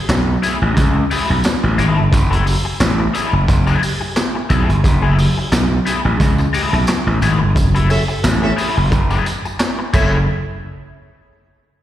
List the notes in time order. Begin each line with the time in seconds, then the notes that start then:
0.09 B1, muted overdriven electric guitar stroke, snare, clap, closed hi-hat, tambourine
0.43 A3 E4 G#4, closed hi-hat, tambourine
0.62 A1, muted overdriven electric guitar stroke
0.77 C#2, kick, closed hi-hat, tambourine
0.96 muted overdriven electric guitar stroke
1.11 A3 E4 G#4, open hi-hat, tambourine
1.30 B1, muted overdriven electric guitar stroke
1.44 snare, clap, closed hi-hat, tambourine
1.63 A1, muted overdriven electric guitar stroke
1.78 G#1 A3 E4 G#4, closed hi-hat, tambourine
1.97 G1, muted overdriven electric guitar stroke
2.12 F#1, muted overdriven electric guitar stroke, kick, closed hi-hat, tambourine
2.30 A3 E4 A4, closed hi-hat
2.45 muted overdriven electric guitar stroke, open hi-hat, tambourine
2.65 muted overdriven electric guitar stroke
2.80 A1, muted overdriven electric guitar stroke, snare, clap, closed hi-hat, tambourine
2.99 muted overdriven electric guitar stroke
3.14 A3 E4 G#4, closed hi-hat, tambourine
3.33 F#1, muted overdriven electric guitar stroke
3.48 F#1, muted overdriven electric guitar stroke, kick, closed hi-hat, tambourine
3.67 A3 E4 G#4, tambourine
3.82 muted overdriven electric guitar stroke, open hi-hat, tambourine
4.01 muted overdriven electric guitar stroke
4.16 muted overdriven electric guitar stroke, snare, clap, closed hi-hat, tambourine
4.35 muted overdriven electric guitar stroke
4.49 B1 A3 E4 G#4, kick, closed hi-hat, tambourine
4.69 G1, muted overdriven electric guitar stroke, closed hi-hat
4.84 F#1, muted overdriven electric guitar stroke, kick, closed hi-hat, tambourine
5.02 A3 E4 G#4
5.18 muted overdriven electric guitar stroke, open hi-hat, tambourine
5.38 muted overdriven electric guitar stroke
5.52 B1, muted overdriven electric guitar stroke, snare, clap, closed hi-hat, tambourine
5.86 A3 E4 G#4, closed hi-hat, tambourine
6.05 A1, muted overdriven electric guitar stroke
6.20 C#2, kick, closed hi-hat, tambourine
6.38 muted overdriven electric guitar stroke, tambourine
6.53 A3 E4 G#4, open hi-hat, tambourine
6.73 B1, muted overdriven electric guitar stroke, tambourine
6.87 snare, clap, closed hi-hat, tambourine
7.07 A1, muted overdriven electric guitar stroke
7.21 G#1 A3 E4 G#4, closed hi-hat, tambourine
7.40 G1, muted overdriven electric guitar stroke
7.55 F#1, muted overdriven electric guitar stroke, kick, closed hi-hat, tambourine
7.75 A3 E4 A4, closed hi-hat
7.90 C#4 A4 E5, muted overdriven electric guitar stroke, open hi-hat, tambourine
8.08 muted overdriven electric guitar stroke, tambourine
8.24 A1, muted overdriven electric guitar stroke, snare, clap, closed hi-hat, tambourine
8.42 C#4 A4 E5, muted overdriven electric guitar stroke
8.57 A3 E4 G#4, open hi-hat, tambourine
8.77 F#1, muted overdriven electric guitar stroke
8.91 F#1, muted overdriven electric guitar stroke, kick, closed hi-hat, tambourine
9.11 A3 E4 G#4, tambourine
9.26 muted overdriven electric guitar stroke, closed hi-hat, tambourine
9.45 muted overdriven electric guitar stroke, tambourine
9.60 snare, clap, closed hi-hat, tambourine
9.79 muted overdriven electric guitar stroke
9.93 F#1 A3 C#4 E4 G#4 A4 E5, kick, crash, tambourine